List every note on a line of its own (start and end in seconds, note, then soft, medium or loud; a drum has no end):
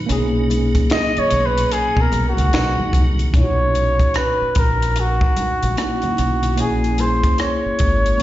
0.00 3.29 A#2 medium
0.00 3.29 F#3 medium
0.00 3.29 D#4 medium
0.06 0.74 B1 loud
0.06 3.28 A#3 medium
0.06 3.29 C#4 medium
0.06 closed hi-hat medium
0.11 3.30 D#4 medium
0.11 3.31 G#4 medium
0.50 closed hi-hat medium
0.50 muted conga soft
0.50 high conga medium
0.75 kick medium
0.75 closed hi-hat soft
0.90 1.21 D#5 loud
0.90 finger snap medium
0.90 snare loud
0.90 closed hi-hat medium
1.16 1.47 C#5 loud
1.16 muted fingered electric bass stroke soft
1.16 closed hi-hat soft
1.16 low conga medium
1.31 1.64 B1 medium
1.31 closed hi-hat medium
1.31 muted conga soft
1.46 1.74 B4 medium
1.58 closed hi-hat medium
1.72 2.02 G#4 medium
1.72 closed hi-hat medium
1.97 2.09 B2 loud
1.97 kick medium
2.01 2.27 A#4 medium
2.12 2.33 B1 loud
2.12 closed hi-hat medium
2.12 high conga medium
2.29 3.04 F#4 medium
2.37 2.50 C#2 medium
2.37 closed hi-hat soft
2.37 high conga medium
2.53 2.73 B1 loud
2.53 finger snap medium
2.53 snare loud
2.53 closed hi-hat medium
2.80 high conga medium
2.80 low conga medium
2.93 3.26 C2 medium
2.93 kick medium
2.93 closed hi-hat medium
2.93 muted conga soft
3.18 closed hi-hat soft
3.18 low conga medium
3.32 3.99 B1 medium
3.32 5.72 A#2 medium
3.32 5.73 C#4 soft
3.32 5.74 D#4 soft
3.32 kick loud
3.32 closed hi-hat medium
3.32 muted conga soft
3.37 3.44 E4 medium
3.37 4.18 C#5 medium
3.44 5.78 F#4 medium
3.75 closed hi-hat medium
3.75 high conga medium
4.00 kick medium
4.00 closed hi-hat soft
4.14 4.56 B4 medium
4.14 cross-stick loud
4.14 closed hi-hat medium
4.14 muted conga soft
4.42 muted fingered electric bass stroke soft
4.55 5.21 A#1 medium
4.55 5.01 A#4 medium
4.55 kick medium
4.55 closed hi-hat medium
4.55 muted conga soft
4.82 cross-stick soft
4.82 closed hi-hat medium
4.96 closed hi-hat medium
4.96 muted conga soft
5.00 5.78 F#4 medium
5.21 kick medium
5.37 muted fingered electric bass stroke soft
5.37 closed hi-hat medium
5.37 muted conga soft
5.37 high conga medium
5.63 5.75 A#1 medium
5.63 closed hi-hat soft
5.63 high conga medium
5.77 6.55 A#3 soft
5.77 6.57 C#4 soft
5.77 6.59 D#4 soft
5.77 5.87 E4 soft
5.77 6.62 F#4 medium
5.77 cross-stick loud
5.77 closed hi-hat medium
5.77 muted conga soft
5.86 6.62 F#4 medium
6.02 closed hi-hat soft
6.02 high conga medium
6.02 low conga medium
6.17 6.59 B1 medium
6.17 cross-stick soft
6.17 closed hi-hat medium
6.17 muted conga soft
6.43 closed hi-hat soft
6.43 low conga medium
6.56 7.23 A#1 medium
6.56 8.16 A#3 medium
6.56 8.17 C#4 medium
6.56 8.18 E4 medium
6.56 7.02 G#4 medium
6.56 closed hi-hat medium
6.56 muted conga soft
6.62 8.19 G#4 medium
6.84 closed hi-hat soft
6.98 7.40 C5 medium
6.98 closed hi-hat medium
6.98 muted conga soft
6.98 high conga medium
7.24 kick medium
7.24 closed hi-hat soft
7.38 8.23 C#5 medium
7.38 cross-stick loud
7.38 closed hi-hat medium
7.38 muted conga soft
7.66 muted fingered electric bass stroke soft
7.79 8.12 G#1 medium
7.79 kick medium
7.79 closed hi-hat medium
8.06 closed hi-hat soft
8.18 8.23 A#3 medium
8.18 8.23 C#4 medium